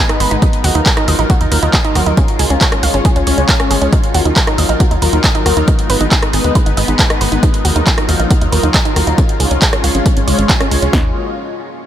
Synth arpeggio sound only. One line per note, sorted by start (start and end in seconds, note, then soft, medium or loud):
0.09 0.19 D#4 loud
0.20 0.27 B4 medium
0.31 0.38 D#4 medium
0.42 0.46 D#4 medium
0.64 0.74 F#4 loud
0.75 0.79 D#4 medium
0.86 0.92 A#4 medium
0.97 1.03 D#4 loud
1.08 1.17 D#5 medium
1.19 1.25 D#4 medium
1.30 1.34 F#4 medium
1.41 1.47 D#4 medium
1.52 1.58 A#4 medium
1.63 1.66 D#4 medium
1.74 1.83 D#5 loud
1.85 1.94 D#4 loud
1.96 2.02 F#4 medium
2.06 2.13 D#4 medium
2.17 2.21 C#4 medium
2.39 2.49 G#4 loud
2.50 2.54 C#4 medium
2.61 2.68 C#5 medium
2.72 2.79 C#4 loud
2.83 2.93 F5 medium
2.94 3.00 C#4 medium
3.05 3.09 G#4 medium
3.16 3.22 C#4 medium
3.27 3.33 C#5 medium
3.38 3.42 C#4 medium
3.49 3.58 F5 loud
3.60 3.69 C#4 loud
3.71 3.77 G#4 medium
3.82 3.88 C#4 medium
3.93 3.96 D#4 medium
4.14 4.24 F#4 loud
4.25 4.29 D#4 medium
4.36 4.43 A#4 medium
4.47 4.54 D#4 loud
4.58 4.68 D#5 medium
4.69 4.76 D#4 medium
4.80 4.84 F#4 medium
4.91 4.97 D#4 medium
5.02 5.08 A#4 medium
5.13 5.17 D#4 medium
5.24 5.33 D#5 loud
5.35 5.44 D#4 loud
5.46 5.52 F#4 medium
5.57 5.63 D#4 medium
5.68 5.72 D#4 medium
5.90 5.99 B4 loud
6.01 6.04 D#4 medium
6.12 6.18 D#5 medium
6.22 6.29 D#4 medium
6.33 6.43 G#5 medium
6.44 6.51 D#4 medium
6.55 6.59 B4 medium
6.66 6.73 D#4 medium
6.77 6.84 D#5 medium
6.88 6.92 D#4 medium
6.99 7.09 G#5 loud
7.10 7.20 D#4 loud
7.21 7.27 B4 medium
7.32 7.38 D#4 medium
7.43 7.47 D#4 medium
7.65 7.74 F#4 medium
7.76 7.80 D#4 medium
7.87 7.93 A#4 medium
7.98 8.04 D#4 medium
8.09 8.18 D#5 medium
8.20 8.26 D#4 medium
8.30 8.34 F#4 medium
8.41 8.48 D#4 medium
8.52 8.59 A#4 medium
8.63 8.67 D#4 medium
8.74 8.84 D#5 loud
8.85 8.95 D#4 loud
8.96 9.03 F#4 medium
9.07 9.13 D#4 medium
9.18 9.22 C#4 medium
9.40 9.50 G#4 medium
9.51 9.55 C#4 medium
9.62 9.68 C#5 medium
9.73 9.79 C#4 loud
9.84 9.93 F5 medium
9.95 10.01 C#4 medium
10.06 10.09 G#4 medium
10.17 10.23 C#4 medium
10.27 10.34 C#5 medium
10.38 10.42 C#4 medium
10.49 10.59 F5 loud
10.60 10.70 C#4 loud
10.71 10.78 G#4 medium
10.82 10.89 C#4 medium
10.93 11.14 D#4 medium